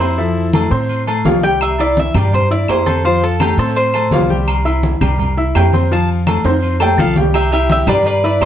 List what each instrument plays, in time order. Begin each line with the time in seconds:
Already playing: upright bass F2, cuban tres E4 C5
0.00 grand piano C4 C5 C6, low agogo
0.18 grand piano F3 A4 E5, high conga
0.36 high conga
0.53 grand piano A3 A4 A5, high conga, low timbale, low agogo
0.71 upright bass A2, grand piano C4 C5 C6, high conga
0.89 high conga, low agogo
1.07 grand piano A3 A4 A5, high conga, low agogo
1.25 upright bass C2, grand piano F3 F4 F5, high conga, low timbale
1.43 grand piano G3 G4 G5, cuban tres G5
1.61 cuban tres E5, high conga, low agogo, claves
1.79 grand piano E4 E5 E6, cuban tres D5, high conga, low agogo
1.97 cuban tres E5, high conga, low timbale
2.14 upright bass G2, grand piano G3 G4 G5, cuban tres D5, high conga, low conga, low agogo, claves
2.33 cuban tres C5, high conga, low conga, low agogo
2.50 grand piano E4 E5 E6, cuban tres D5, high conga
2.68 upright bass F2, cuban tres C5, high conga, low timbale, low agogo, claves
2.86 grand piano C4 C5 C6, cuban tres A4, high conga, low agogo
3.04 grand piano F3 F4 F5, cuban tres C5, high conga
3.23 cuban tres A4, high conga
3.40 grand piano A3 A4 A5, cuban tres G4, high conga, low timbale, low agogo, claves
3.58 upright bass A2, grand piano C4 C5 C6, cuban tres A4, high conga
3.76 cuban tres C5, high conga, low agogo
3.94 grand piano A3 A4 A5, high conga, low agogo, claves
4.11 upright bass C2, grand piano F3 F4 F5, high conga, low timbale
4.29 grand piano G3 G4 G5, high conga
4.48 high conga, low agogo, claves
4.65 grand piano E4 E5 E6, high conga, low agogo
4.83 high conga, low timbale
5.01 upright bass C2, grand piano G3 G4 G5, high conga, low conga, low agogo, claves
5.19 high conga, low conga, low agogo
5.37 grand piano E4 E5 E6, high conga
5.55 upright bass F2, cuban tres G5, high conga, low timbale, low agogo, claves
5.72 grand piano C4 C5 C6, high conga, low agogo
5.91 grand piano F3 F4 F5, cuban tres A5, high conga
6.09 high conga
6.27 grand piano A3 A4 A5, high conga, low timbale, low agogo, claves
6.44 upright bass F2, grand piano C4 C5 C6, high conga, high timbale
6.62 high conga, low agogo
6.80 grand piano A3 A4 A5, cuban tres G5, high conga, low timbale, low agogo, claves
6.98 upright bass C2, grand piano F3 F4 F5, cuban tres A4 F5, high conga
7.16 grand piano G3 G4 G5, high conga, low timbale
7.34 cuban tres G4 E5, high conga, low agogo, claves
7.52 grand piano E4 E5 E6, cuban tres G4 E5, high conga, low agogo
7.69 cuban tres G4 E5, high conga, low timbale
7.87 upright bass G2, grand piano G3 G4 G5, cuban tres B4 D5, high conga, low conga, low agogo, claves
8.05 cuban tres B4 D5, high conga, low agogo
8.23 grand piano E4 E5 E6, cuban tres B4 D5, high conga
8.41 upright bass F2, high conga, low timbale, low agogo, claves